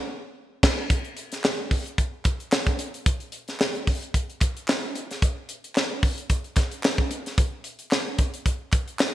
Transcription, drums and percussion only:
0.63 kick, snare, crash
0.90 kick, closed hi-hat
1.04 closed hi-hat
1.17 closed hi-hat
1.32 snare, closed hi-hat
1.44 snare, clap
1.71 kick, open hi-hat
1.86 closed hi-hat
1.98 kick, closed hi-hat
2.25 kick, clap, closed hi-hat
2.40 closed hi-hat
2.52 snare, clap
2.67 kick, closed hi-hat
2.79 closed hi-hat
2.94 closed hi-hat
3.06 kick, closed hi-hat
3.20 closed hi-hat
3.32 closed hi-hat
3.48 snare, closed hi-hat
3.60 snare, clap
3.75 closed hi-hat
3.87 kick, open hi-hat
4.02 closed hi-hat
4.14 kick, closed hi-hat
4.30 closed hi-hat
4.41 kick, clap, closed hi-hat
4.57 closed hi-hat
4.67 snare, clap
4.95 closed hi-hat
5.11 snare, closed hi-hat
5.22 kick, closed hi-hat
5.49 closed hi-hat
5.64 closed hi-hat
5.75 snare, clap
6.03 kick, open hi-hat
6.18 closed hi-hat
6.30 kick, closed hi-hat
6.44 closed hi-hat
6.56 kick, snare, clap, closed hi-hat
6.71 closed hi-hat
6.83 snare, clap
6.98 kick
7.11 closed hi-hat
7.26 snare, closed hi-hat
7.38 kick, closed hi-hat
7.64 closed hi-hat
7.79 closed hi-hat
7.91 snare, clap
8.18 kick, closed hi-hat
8.34 closed hi-hat
8.46 kick, closed hi-hat
8.72 kick, clap, closed hi-hat
8.88 closed hi-hat
8.99 snare, clap

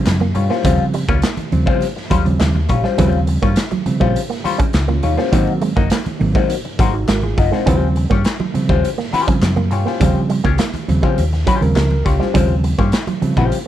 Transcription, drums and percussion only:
0.06 snare, clap, closed hi-hat
0.20 muted conga, high conga
0.35 closed hi-hat, low conga
0.51 snare
0.64 kick, closed hi-hat, low conga
0.78 muted conga
0.94 closed hi-hat
1.08 kick, high conga
1.22 snare, clap, closed hi-hat
1.37 closed hi-hat, muted conga, high conga
1.52 closed hi-hat, high conga, low conga
1.67 kick
1.81 closed hi-hat, muted conga
1.97 snare
2.10 kick, closed hi-hat, high conga
2.26 closed hi-hat
2.40 snare, clap, closed hi-hat, muted conga
2.54 high conga
2.69 kick, closed hi-hat, low conga
2.85 snare
2.98 kick, closed hi-hat, muted conga, low conga
3.13 muted conga
3.27 closed hi-hat
3.42 kick, high conga
3.56 snare, clap, closed hi-hat, muted conga
3.71 closed hi-hat, high conga
3.86 closed hi-hat, high conga, low conga
4.01 kick
4.16 closed hi-hat
4.31 snare
4.45 closed hi-hat, high conga
4.59 kick, closed hi-hat
4.73 snare, clap, closed hi-hat, muted conga
4.88 muted conga, high conga
5.03 closed hi-hat, low conga
5.18 snare
5.33 kick, closed hi-hat, low conga
5.47 muted conga
5.61 closed hi-hat
5.77 kick, high conga
5.90 snare, clap, closed hi-hat
6.06 closed hi-hat, muted conga, high conga
6.21 open hi-hat, high conga, low conga
6.35 kick
6.50 closed hi-hat
6.65 muted conga
6.79 kick, closed hi-hat, high conga
7.08 snare, clap, closed hi-hat, muted conga
7.23 high conga
7.37 kick, open hi-hat, low conga
7.53 snare
7.67 kick, closed hi-hat, muted conga, low conga
7.82 muted conga
7.96 closed hi-hat
8.11 kick, high conga
8.25 snare, clap, closed hi-hat
8.40 muted conga, high conga
8.55 closed hi-hat, high conga, low conga
8.69 kick
8.84 closed hi-hat, muted conga
8.99 snare, muted conga
9.13 closed hi-hat, high conga
9.28 kick, closed hi-hat
9.42 snare, clap, closed hi-hat
9.57 muted conga, high conga
9.71 closed hi-hat, low conga
9.87 snare
10.01 kick, closed hi-hat, muted conga, low conga
10.15 muted conga
10.30 closed hi-hat
10.45 kick, high conga
10.58 snare, clap, closed hi-hat
10.74 closed hi-hat, muted conga, high conga
10.88 closed hi-hat, high conga, low conga
11.03 kick
11.18 closed hi-hat
11.33 snare, muted conga
11.47 kick, closed hi-hat, high conga
11.62 closed hi-hat
11.76 snare, clap, closed hi-hat
11.91 muted conga, high conga
12.05 kick, closed hi-hat, low conga
12.21 snare
12.35 kick, closed hi-hat, muted conga, low conga
12.49 muted conga
12.64 closed hi-hat
12.78 kick, high conga
12.92 snare, clap, closed hi-hat, muted conga
13.07 closed hi-hat, high conga
13.22 closed hi-hat, high conga, low conga
13.37 kick
13.52 closed hi-hat, muted conga

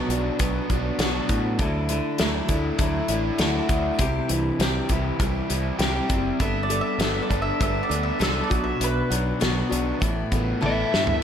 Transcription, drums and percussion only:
0.10 closed hi-hat
0.39 kick, closed hi-hat
0.70 kick, closed hi-hat
0.99 snare, closed hi-hat
1.29 kick, closed hi-hat
1.59 kick, closed hi-hat
1.89 closed hi-hat
2.18 snare, closed hi-hat
2.49 kick, closed hi-hat
2.79 kick, closed hi-hat
3.08 closed hi-hat
3.38 snare, closed hi-hat
3.69 kick, closed hi-hat
3.99 kick, closed hi-hat
4.29 closed hi-hat
4.60 snare, closed hi-hat
4.89 kick, closed hi-hat
5.20 kick, closed hi-hat
5.50 closed hi-hat
5.79 snare, closed hi-hat
6.10 kick, closed hi-hat
6.40 kick, closed hi-hat
6.70 closed hi-hat
7.00 snare, closed hi-hat
7.31 kick, closed hi-hat
7.61 kick, closed hi-hat
7.91 closed hi-hat
8.21 snare, closed hi-hat
8.51 kick, closed hi-hat
8.81 closed hi-hat
9.12 closed hi-hat
9.41 snare, closed hi-hat
9.72 closed hi-hat
10.02 kick, closed hi-hat
10.32 kick, closed hi-hat
10.63 high tom
10.94 snare
11.07 floor tom

